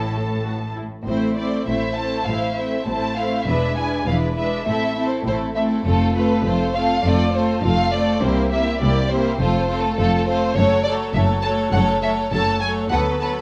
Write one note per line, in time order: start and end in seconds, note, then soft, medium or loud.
0.00 0.87 A1 soft
0.00 0.87 A2 soft
0.00 0.15 E4 soft
0.00 0.76 A4 soft
0.00 0.73 A5 medium
0.15 0.46 A4 soft
0.46 0.54 F#4 soft
0.77 0.85 E4 soft
1.07 1.58 A1 soft
1.07 1.58 A2 soft
1.07 1.38 A3 soft
1.07 1.37 C4 soft
1.07 1.37 E4 soft
1.07 1.35 C5 medium
1.07 1.37 C5 soft
1.38 1.67 A3 soft
1.38 1.67 C4 soft
1.38 1.67 E4 soft
1.38 1.67 C5 soft
1.38 1.68 D5 soft
1.67 2.18 A1 soft
1.67 2.18 A2 soft
1.67 1.97 A3 soft
1.67 1.97 C4 soft
1.67 1.97 E4 soft
1.67 1.97 C5 soft
1.67 1.97 E5 medium
1.97 2.27 A3 soft
1.97 2.27 C4 soft
1.97 2.27 E4 soft
1.97 2.27 C5 soft
1.97 2.27 A5 medium
2.27 2.77 A1 soft
2.27 2.77 A2 soft
2.27 2.57 A3 soft
2.27 2.57 C4 soft
2.27 2.56 E4 soft
2.27 2.55 C5 soft
2.27 2.57 F5 medium
2.57 2.86 A3 soft
2.57 2.86 C4 soft
2.57 2.86 E4 soft
2.57 2.86 C5 soft
2.57 2.87 E5 soft
2.86 3.37 A1 soft
2.86 3.37 A2 soft
2.86 3.17 A3 soft
2.86 3.16 C4 soft
2.86 3.16 E4 soft
2.86 3.16 C5 soft
2.86 3.17 A5 medium
3.17 3.47 A3 soft
3.17 3.47 C4 soft
3.17 3.46 E4 soft
3.17 3.46 C5 soft
3.17 3.47 F5 medium
3.46 3.97 E1 medium
3.46 3.97 E2 soft
3.46 3.77 G#3 soft
3.46 3.77 D4 soft
3.46 3.75 E4 soft
3.46 3.75 B4 soft
3.46 3.77 E5 medium
3.76 4.07 G#3 soft
3.76 4.07 D4 soft
3.76 4.05 E4 soft
3.76 4.06 B4 soft
3.76 4.07 G#5 soft
4.06 4.56 E1 medium
4.06 4.56 E2 soft
4.06 4.36 G#3 soft
4.06 4.36 D4 soft
4.06 4.35 E4 soft
4.06 4.35 B4 soft
4.06 4.16 F5 medium
4.36 4.66 G#3 soft
4.36 4.66 D4 soft
4.36 4.66 E4 soft
4.36 4.65 B4 soft
4.36 4.66 E5 medium
4.66 5.16 A1 soft
4.66 5.16 A2 soft
4.66 4.96 A3 soft
4.66 4.95 C4 soft
4.66 4.95 E4 soft
4.66 4.94 A4 soft
4.66 5.05 E5 medium
4.96 5.26 A3 soft
4.96 5.25 C4 soft
4.96 5.25 E4 soft
4.96 5.25 A4 soft
5.08 5.15 C5 soft
5.25 5.75 A1 soft
5.25 5.75 A2 medium
5.25 5.55 A3 soft
5.25 5.54 C4 soft
5.25 5.55 E4 soft
5.25 5.55 A4 soft
5.25 5.35 C5 medium
5.55 5.84 A3 soft
5.55 5.84 C4 soft
5.55 5.85 E4 soft
5.55 5.85 A4 soft
5.55 5.64 E5 medium
5.85 6.35 F1 medium
5.85 6.35 F2 medium
5.85 6.14 A3 soft
5.85 6.14 C4 soft
5.85 6.15 F4 soft
5.85 6.15 A4 soft
5.85 6.15 A4 medium
6.15 6.44 A3 soft
6.15 6.44 C4 soft
6.15 6.44 F4 soft
6.15 6.45 A4 soft
6.15 6.45 B4 medium
6.44 6.94 F1 medium
6.44 6.94 F2 medium
6.44 6.74 A3 soft
6.44 6.74 C4 soft
6.44 6.74 F4 soft
6.44 6.74 A4 soft
6.44 6.75 C5 medium
6.75 7.03 A3 soft
6.75 7.04 C4 soft
6.75 7.04 F4 soft
6.75 7.04 A4 soft
6.75 7.05 F5 medium
7.04 7.53 F1 medium
7.04 7.53 F2 medium
7.04 7.33 A3 soft
7.04 7.32 C4 soft
7.04 7.33 F4 medium
7.04 7.34 A4 soft
7.04 7.34 D5 medium
7.34 7.61 A3 soft
7.34 7.62 C4 soft
7.34 7.63 F4 soft
7.34 7.63 A4 soft
7.34 7.64 C5 medium
7.62 8.12 F1 medium
7.62 8.12 F2 medium
7.62 7.92 A3 soft
7.62 7.92 C4 soft
7.62 7.92 F4 soft
7.62 7.93 A4 soft
7.62 7.92 F5 medium
7.93 8.22 A3 soft
7.93 8.21 C4 soft
7.93 8.22 F4 soft
7.93 8.22 A4 soft
7.93 8.22 D5 medium
8.22 8.71 C2 medium
8.22 8.51 A#3 soft
8.22 8.50 C4 soft
8.22 8.50 E4 soft
8.22 8.50 G4 soft
8.22 8.51 C5 medium
8.51 8.79 A#3 soft
8.51 8.79 C4 soft
8.51 8.80 E4 soft
8.51 8.80 G4 soft
8.51 8.80 E5 medium
8.80 9.30 C2 medium
8.80 9.09 A#3 soft
8.80 9.09 C4 soft
8.80 9.10 E4 soft
8.80 9.09 G4 soft
8.80 9.10 D5 medium
9.10 9.39 A#3 medium
9.10 9.39 C4 soft
9.10 9.39 E4 soft
9.10 9.39 G4 soft
9.10 9.38 C5 medium
9.39 9.88 F1 medium
9.39 9.88 F2 medium
9.39 9.68 A3 soft
9.39 9.68 C4 soft
9.39 9.68 F4 medium
9.39 9.68 A4 medium
9.39 9.77 C5 medium
9.69 9.96 A3 soft
9.69 9.97 C4 soft
9.69 9.97 F4 soft
9.69 9.97 A4 soft
9.79 9.96 A4 medium
9.97 10.47 F1 medium
9.97 10.47 F2 medium
9.97 10.26 A3 soft
9.97 10.26 C4 medium
9.97 10.26 F4 soft
9.97 10.26 A4 medium
9.97 10.26 A4 soft
10.27 10.55 A3 soft
10.27 10.56 C4 soft
10.27 10.56 F4 soft
10.27 10.55 A4 soft
10.27 10.56 C5 medium
10.55 11.06 F#1 medium
10.55 11.06 F#2 medium
10.55 10.85 F#3 medium
10.55 10.85 A3 medium
10.55 10.85 A4 medium
10.55 10.85 C#5 medium
10.84 11.14 F#3 soft
10.84 11.14 A3 soft
10.84 11.14 A4 soft
10.84 11.14 C#5 soft
10.84 10.92 D5 medium
11.14 11.64 F#1 medium
11.14 11.64 F#2 medium
11.14 11.44 F#3 soft
11.14 11.44 A3 soft
11.14 11.43 A4 soft
11.14 11.42 C#5 soft
11.14 11.22 E5 medium
11.42 11.73 F#3 medium
11.42 11.73 A3 medium
11.42 11.72 A4 medium
11.42 11.73 C#5 medium
11.42 11.50 A5 medium
11.72 12.23 F#1 medium
11.72 12.23 F#2 medium
11.72 12.02 F#3 soft
11.72 12.02 A3 soft
11.72 12.02 A4 medium
11.72 12.02 C#5 medium
11.72 11.80 F#5 medium
12.02 12.32 F#3 soft
12.02 12.32 A3 soft
12.02 12.31 A4 soft
12.02 12.32 C#5 soft
12.02 12.10 E5 medium
12.32 12.82 F#1 medium
12.32 12.82 F#2 medium
12.32 12.61 F#3 soft
12.32 12.61 A3 soft
12.32 12.61 A4 soft
12.32 12.60 C#5 soft
12.32 12.61 A5 medium
12.62 12.91 F#3 soft
12.62 12.91 A3 soft
12.62 12.89 A4 soft
12.62 12.91 C#5 medium
12.62 12.70 G#5 medium
12.90 13.41 D2 medium
12.90 13.21 F#3 medium
12.90 13.20 B3 medium
12.90 13.20 A4 medium
12.90 13.20 B4 medium
12.90 13.00 F#5 medium
13.21 13.41 F#3 soft
13.21 13.41 B3 soft
13.21 13.41 A4 soft
13.21 13.41 B4 soft
13.21 13.29 A5 medium